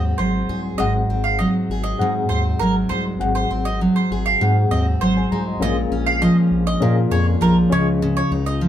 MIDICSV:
0, 0, Header, 1, 5, 480
1, 0, Start_track
1, 0, Tempo, 602410
1, 627, Time_signature, 4, 2, 24, 8
1, 6919, End_track
2, 0, Start_track
2, 0, Title_t, "Mandolin"
2, 0, Program_c, 0, 25
2, 142, Note_on_c, 0, 72, 69
2, 483, Note_off_c, 0, 72, 0
2, 622, Note_on_c, 0, 75, 85
2, 738, Note_off_c, 0, 75, 0
2, 987, Note_on_c, 0, 77, 71
2, 1101, Note_off_c, 0, 77, 0
2, 1105, Note_on_c, 0, 75, 72
2, 1221, Note_off_c, 0, 75, 0
2, 1463, Note_on_c, 0, 75, 74
2, 1694, Note_off_c, 0, 75, 0
2, 1825, Note_on_c, 0, 72, 70
2, 1941, Note_off_c, 0, 72, 0
2, 2067, Note_on_c, 0, 70, 80
2, 2183, Note_off_c, 0, 70, 0
2, 2305, Note_on_c, 0, 72, 70
2, 2422, Note_off_c, 0, 72, 0
2, 2670, Note_on_c, 0, 72, 69
2, 2784, Note_off_c, 0, 72, 0
2, 2910, Note_on_c, 0, 75, 75
2, 3024, Note_off_c, 0, 75, 0
2, 3154, Note_on_c, 0, 72, 65
2, 3267, Note_off_c, 0, 72, 0
2, 3392, Note_on_c, 0, 77, 74
2, 3620, Note_off_c, 0, 77, 0
2, 3754, Note_on_c, 0, 75, 78
2, 3867, Note_off_c, 0, 75, 0
2, 3993, Note_on_c, 0, 72, 75
2, 4330, Note_off_c, 0, 72, 0
2, 4481, Note_on_c, 0, 75, 88
2, 4590, Note_off_c, 0, 75, 0
2, 4832, Note_on_c, 0, 77, 81
2, 4945, Note_off_c, 0, 77, 0
2, 4955, Note_on_c, 0, 75, 76
2, 5066, Note_off_c, 0, 75, 0
2, 5314, Note_on_c, 0, 75, 83
2, 5539, Note_off_c, 0, 75, 0
2, 5669, Note_on_c, 0, 73, 74
2, 5783, Note_off_c, 0, 73, 0
2, 5911, Note_on_c, 0, 70, 81
2, 6024, Note_off_c, 0, 70, 0
2, 6155, Note_on_c, 0, 73, 79
2, 6265, Note_off_c, 0, 73, 0
2, 6507, Note_on_c, 0, 73, 79
2, 6621, Note_off_c, 0, 73, 0
2, 6744, Note_on_c, 0, 75, 79
2, 6859, Note_off_c, 0, 75, 0
2, 6919, End_track
3, 0, Start_track
3, 0, Title_t, "Reed electric piano"
3, 0, Program_c, 1, 4
3, 0, Control_c, 1, 64, 127
3, 0, Note_on_c, 1, 60, 77
3, 0, Note_on_c, 1, 68, 74
3, 0, Note_on_c, 1, 78, 86
3, 331, Note_off_c, 1, 60, 0
3, 335, Note_off_c, 1, 68, 0
3, 337, Note_off_c, 1, 78, 0
3, 617, Note_on_c, 1, 60, 81
3, 626, Note_on_c, 1, 68, 72
3, 636, Note_on_c, 1, 78, 84
3, 638, Control_c, 1, 64, 0
3, 800, Control_c, 1, 64, 127
3, 1294, Note_off_c, 1, 60, 0
3, 1298, Note_off_c, 1, 68, 0
3, 1303, Note_off_c, 1, 78, 0
3, 1579, Note_on_c, 1, 60, 83
3, 1584, Note_on_c, 1, 68, 75
3, 1588, Note_on_c, 1, 78, 94
3, 2256, Note_off_c, 1, 60, 0
3, 2258, Note_off_c, 1, 68, 0
3, 2260, Note_off_c, 1, 78, 0
3, 2544, Note_on_c, 1, 60, 82
3, 2549, Note_on_c, 1, 68, 77
3, 2554, Note_on_c, 1, 78, 92
3, 3218, Note_off_c, 1, 60, 0
3, 3221, Note_off_c, 1, 68, 0
3, 3224, Note_off_c, 1, 78, 0
3, 3514, Note_on_c, 1, 60, 84
3, 3519, Note_on_c, 1, 68, 72
3, 3528, Note_on_c, 1, 78, 93
3, 3999, Note_off_c, 1, 78, 0
3, 4119, Note_on_c, 1, 80, 59
3, 4121, Note_on_c, 1, 72, 53
3, 4183, Note_off_c, 1, 60, 0
3, 4185, Note_off_c, 1, 68, 0
3, 4229, Note_off_c, 1, 80, 0
3, 4230, Note_off_c, 1, 72, 0
3, 4235, Note_on_c, 1, 82, 68
3, 4347, Note_off_c, 1, 82, 0
3, 4361, Note_on_c, 1, 84, 60
3, 4364, Note_on_c, 1, 75, 52
3, 4462, Note_on_c, 1, 61, 85
3, 4467, Note_on_c, 1, 68, 79
3, 4469, Note_on_c, 1, 70, 81
3, 4478, Note_on_c, 1, 77, 95
3, 4481, Control_c, 1, 64, 0
3, 4584, Note_off_c, 1, 84, 0
3, 4586, Note_off_c, 1, 75, 0
3, 4613, Control_c, 1, 64, 127
3, 5136, Note_off_c, 1, 61, 0
3, 5139, Note_off_c, 1, 68, 0
3, 5140, Note_off_c, 1, 70, 0
3, 5144, Note_off_c, 1, 77, 0
3, 5423, Note_on_c, 1, 61, 90
3, 5434, Note_on_c, 1, 68, 82
3, 5436, Note_on_c, 1, 70, 80
3, 5443, Note_on_c, 1, 77, 91
3, 6095, Note_off_c, 1, 61, 0
3, 6101, Note_off_c, 1, 68, 0
3, 6102, Note_off_c, 1, 70, 0
3, 6105, Note_off_c, 1, 77, 0
3, 6136, Note_on_c, 1, 61, 88
3, 6140, Note_on_c, 1, 65, 81
3, 6147, Note_on_c, 1, 68, 84
3, 6151, Note_on_c, 1, 75, 94
3, 6157, Control_c, 1, 64, 0
3, 6284, Control_c, 1, 64, 127
3, 6908, Note_off_c, 1, 61, 0
3, 6910, Note_off_c, 1, 65, 0
3, 6913, Note_off_c, 1, 68, 0
3, 6916, Note_off_c, 1, 75, 0
3, 6919, End_track
4, 0, Start_track
4, 0, Title_t, "Steel-string acoustic guitar"
4, 0, Program_c, 2, 25
4, 0, Note_on_c, 2, 44, 76
4, 0, Note_on_c, 2, 54, 60
4, 0, Note_on_c, 2, 56, 55
4, 0, Note_on_c, 2, 60, 59
4, 0, Note_on_c, 2, 68, 53
4, 148, Note_off_c, 2, 54, 0
4, 151, Note_on_c, 2, 54, 66
4, 389, Note_off_c, 2, 68, 0
4, 392, Note_on_c, 2, 68, 66
4, 624, Note_off_c, 2, 44, 0
4, 634, Note_on_c, 2, 44, 80
4, 872, Note_off_c, 2, 60, 0
4, 875, Note_on_c, 2, 60, 57
4, 899, Note_off_c, 2, 54, 0
4, 1116, Note_on_c, 2, 54, 61
4, 1140, Note_off_c, 2, 56, 0
4, 1140, Note_off_c, 2, 68, 0
4, 1362, Note_on_c, 2, 68, 62
4, 1592, Note_off_c, 2, 44, 0
4, 1605, Note_on_c, 2, 44, 79
4, 1833, Note_off_c, 2, 60, 0
4, 1849, Note_on_c, 2, 60, 63
4, 2074, Note_off_c, 2, 54, 0
4, 2086, Note_on_c, 2, 54, 69
4, 2319, Note_on_c, 2, 56, 60
4, 2547, Note_off_c, 2, 44, 0
4, 2556, Note_on_c, 2, 44, 82
4, 2784, Note_off_c, 2, 60, 0
4, 2793, Note_on_c, 2, 60, 60
4, 3029, Note_off_c, 2, 54, 0
4, 3038, Note_on_c, 2, 54, 59
4, 3277, Note_off_c, 2, 68, 0
4, 3281, Note_on_c, 2, 68, 63
4, 3506, Note_off_c, 2, 44, 0
4, 3516, Note_on_c, 2, 44, 80
4, 3747, Note_off_c, 2, 60, 0
4, 3756, Note_on_c, 2, 60, 60
4, 3988, Note_off_c, 2, 54, 0
4, 3998, Note_on_c, 2, 54, 71
4, 4236, Note_off_c, 2, 56, 0
4, 4239, Note_on_c, 2, 56, 62
4, 4482, Note_on_c, 2, 46, 89
4, 4521, Note_off_c, 2, 44, 0
4, 4521, Note_off_c, 2, 60, 0
4, 4522, Note_off_c, 2, 54, 0
4, 4715, Note_on_c, 2, 61, 60
4, 4953, Note_on_c, 2, 53, 70
4, 5423, Note_off_c, 2, 46, 0
4, 5433, Note_on_c, 2, 46, 84
4, 5457, Note_off_c, 2, 56, 0
4, 5457, Note_off_c, 2, 68, 0
4, 5667, Note_on_c, 2, 68, 68
4, 5900, Note_off_c, 2, 53, 0
4, 5903, Note_on_c, 2, 53, 76
4, 6150, Note_off_c, 2, 46, 0
4, 6153, Note_on_c, 2, 49, 85
4, 6383, Note_off_c, 2, 49, 0
4, 6393, Note_on_c, 2, 49, 85
4, 6624, Note_off_c, 2, 61, 0
4, 6627, Note_on_c, 2, 63, 62
4, 6651, Note_off_c, 2, 53, 0
4, 6863, Note_on_c, 2, 53, 68
4, 6919, Note_off_c, 2, 49, 0
4, 6919, Note_off_c, 2, 53, 0
4, 6919, Note_off_c, 2, 63, 0
4, 6919, Note_off_c, 2, 68, 0
4, 6919, End_track
5, 0, Start_track
5, 0, Title_t, "Analog synth bass"
5, 0, Program_c, 3, 38
5, 0, Note_on_c, 3, 39, 98
5, 108, Note_off_c, 3, 39, 0
5, 149, Note_on_c, 3, 32, 86
5, 345, Note_off_c, 3, 32, 0
5, 386, Note_on_c, 3, 36, 88
5, 583, Note_off_c, 3, 36, 0
5, 630, Note_on_c, 3, 32, 100
5, 826, Note_off_c, 3, 32, 0
5, 864, Note_on_c, 3, 32, 97
5, 1161, Note_off_c, 3, 32, 0
5, 1347, Note_on_c, 3, 32, 101
5, 1545, Note_off_c, 3, 32, 0
5, 1594, Note_on_c, 3, 44, 102
5, 1789, Note_off_c, 3, 44, 0
5, 1832, Note_on_c, 3, 39, 91
5, 2028, Note_off_c, 3, 39, 0
5, 2077, Note_on_c, 3, 32, 86
5, 2271, Note_off_c, 3, 32, 0
5, 2313, Note_on_c, 3, 36, 98
5, 2509, Note_off_c, 3, 36, 0
5, 2553, Note_on_c, 3, 32, 113
5, 2749, Note_off_c, 3, 32, 0
5, 2793, Note_on_c, 3, 32, 92
5, 3088, Note_off_c, 3, 32, 0
5, 3272, Note_on_c, 3, 32, 100
5, 3469, Note_off_c, 3, 32, 0
5, 3517, Note_on_c, 3, 44, 106
5, 3711, Note_off_c, 3, 44, 0
5, 3755, Note_on_c, 3, 39, 102
5, 3950, Note_off_c, 3, 39, 0
5, 3994, Note_on_c, 3, 32, 84
5, 4190, Note_off_c, 3, 32, 0
5, 4232, Note_on_c, 3, 36, 80
5, 4428, Note_off_c, 3, 36, 0
5, 4464, Note_on_c, 3, 34, 105
5, 4664, Note_off_c, 3, 34, 0
5, 4710, Note_on_c, 3, 34, 99
5, 5005, Note_off_c, 3, 34, 0
5, 5187, Note_on_c, 3, 34, 110
5, 5385, Note_off_c, 3, 34, 0
5, 5429, Note_on_c, 3, 46, 107
5, 5626, Note_off_c, 3, 46, 0
5, 5666, Note_on_c, 3, 41, 97
5, 5863, Note_off_c, 3, 41, 0
5, 5909, Note_on_c, 3, 34, 93
5, 6105, Note_off_c, 3, 34, 0
5, 6150, Note_on_c, 3, 37, 94
5, 6542, Note_off_c, 3, 37, 0
5, 6624, Note_on_c, 3, 37, 110
5, 6919, Note_off_c, 3, 37, 0
5, 6919, End_track
0, 0, End_of_file